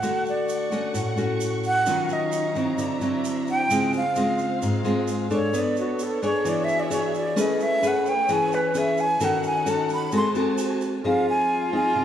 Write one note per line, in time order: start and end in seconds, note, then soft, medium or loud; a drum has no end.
0.00 0.92 D3 medium
0.00 0.68 A3 medium
0.00 0.69 F#4 medium
0.00 0.24 F#5 medium
0.00 1.85 F#5 medium
0.00 2.76 C#6 medium
0.00 shaker medium
0.26 0.92 D5 medium
0.26 shaker soft
0.49 shaker medium
0.72 1.14 A3 medium
0.72 1.14 C#4 medium
0.72 1.14 F#4 medium
0.72 shaker soft
0.94 1.84 A2 medium
0.94 shaker medium
1.17 1.83 A3 medium
1.17 1.83 C#4 medium
1.17 1.83 F#4 medium
1.17 shaker soft
1.40 shaker medium
1.64 2.14 F#5 loud
1.64 shaker soft
1.86 2.76 D#3 medium
1.86 2.52 F#3 medium
1.86 2.52 C#4 medium
1.86 2.78 D#4 medium
1.86 2.52 F4 medium
1.86 2.78 F5 medium
1.86 3.69 A#5 medium
1.86 shaker medium
2.09 2.80 D#5 medium
2.09 shaker soft
2.32 shaker medium
2.55 2.98 F#3 medium
2.55 2.98 C4 medium
2.55 2.98 E4 medium
2.55 shaker soft
2.78 3.68 D3 medium
2.78 3.70 D4 medium
2.78 5.52 C5 medium
2.78 3.70 E5 medium
2.78 shaker medium
3.01 3.67 F#3 medium
3.01 3.67 C4 medium
3.01 3.67 E4 medium
3.01 shaker soft
3.25 shaker medium
3.47 3.92 G5 loud
3.47 shaker soft
3.69 4.60 C#3 medium
3.69 4.00 G#3 medium
3.69 5.52 C4 medium
3.69 4.00 C4 medium
3.69 4.01 F4 medium
3.69 5.52 F5 medium
3.69 shaker medium
3.93 4.60 F5 medium
3.93 shaker soft
4.16 4.81 G#3 medium
4.16 4.82 C4 medium
4.16 4.82 F4 medium
4.16 shaker medium
4.39 shaker soft
4.62 5.52 G#2 medium
4.62 shaker medium
4.84 5.27 G#3 medium
4.84 5.27 C4 medium
4.84 5.27 F4 medium
4.84 shaker soft
5.08 shaker medium
5.30 6.19 D4 medium
5.30 6.19 A4 medium
5.30 6.19 C#5 medium
5.30 shaker soft
5.35 5.60 C#5 medium
5.53 6.43 B3 medium
5.53 6.45 B3 medium
5.53 7.36 D4 medium
5.53 6.45 A4 medium
5.53 7.36 C#5 medium
5.53 shaker medium
5.58 5.79 D5 medium
5.76 6.05 F#4 soft
5.76 shaker soft
5.99 6.24 A4 medium
5.99 shaker medium
6.23 6.88 D4 medium
6.23 6.88 G#4 medium
6.23 6.88 C#5 medium
6.23 6.50 C#5 medium
6.23 shaker soft
6.45 7.35 E3 medium
6.45 7.37 F#4 medium
6.45 7.37 G#4 medium
6.45 6.66 D5 medium
6.45 7.37 E5 medium
6.45 shaker medium
6.64 6.81 E5 medium
6.64 shaker soft
6.80 6.96 D5 medium
6.90 7.33 D4 medium
6.90 7.33 G#4 medium
6.90 7.34 C#5 medium
6.90 shaker medium
6.95 7.16 C#5 medium
7.14 7.42 D5 medium
7.14 shaker soft
7.36 8.26 A3 medium
7.36 9.19 A3 medium
7.36 7.79 C#4 medium
7.36 7.79 G#4 medium
7.36 9.19 G#4 medium
7.36 7.79 B4 medium
7.36 9.19 B4 medium
7.36 9.19 C#5 medium
7.36 shaker medium
7.41 7.64 D#5 medium
7.60 7.89 E5 medium
7.60 shaker soft
7.82 8.12 C#4 medium
7.82 8.12 G#4 medium
7.82 8.13 B4 medium
7.82 shaker medium
7.87 8.10 F#5 medium
8.06 8.34 G5 medium
8.06 shaker soft
8.29 9.18 E3 medium
8.29 8.71 C#4 medium
8.29 8.71 G#4 medium
8.29 8.72 B4 medium
8.29 8.56 G#5 loud
8.29 shaker medium
8.52 8.79 B4 medium
8.52 shaker soft
8.74 9.04 C#4 medium
8.74 9.05 G#4 medium
8.74 9.05 B4 medium
8.74 9.02 E5 medium
8.74 shaker medium
8.98 9.26 G#5 loud
8.98 shaker soft
9.20 10.10 D#3 medium
9.20 9.63 C#4 medium
9.20 10.13 D#4 medium
9.20 9.63 F#4 medium
9.20 9.63 A4 medium
9.20 10.12 C#5 medium
9.20 10.12 F#5 medium
9.20 9.46 F#5 medium
9.20 shaker medium
9.43 9.71 G#5 medium
9.43 shaker soft
9.66 10.10 C#4 medium
9.66 10.11 F#4 medium
9.66 10.11 A4 medium
9.66 9.91 A5 medium
9.66 shaker medium
9.89 10.13 B5 loud
9.89 shaker soft
10.12 11.02 G#3 medium
10.12 10.26 C4 medium
10.12 10.26 F#4 medium
10.12 11.04 F#4 medium
10.12 10.26 A4 medium
10.12 11.04 C5 medium
10.12 11.04 G#5 medium
10.12 11.04 A5 medium
10.12 shaker medium
10.17 10.29 C6 medium
10.35 11.01 C4 medium
10.35 11.01 F#4 medium
10.35 11.01 A4 medium
10.35 shaker soft
10.58 shaker medium
10.81 shaker soft
11.04 11.94 F3 medium
11.04 11.69 C4 medium
11.04 11.70 D#4 medium
11.04 12.05 F4 medium
11.04 11.70 G#4 medium
11.04 11.27 F5 medium
11.30 11.71 G#5 medium
11.73 12.05 C4 medium
11.73 12.05 D#4 medium
11.73 12.05 G#4 medium
11.73 12.05 G#5 medium
11.95 12.05 C3 medium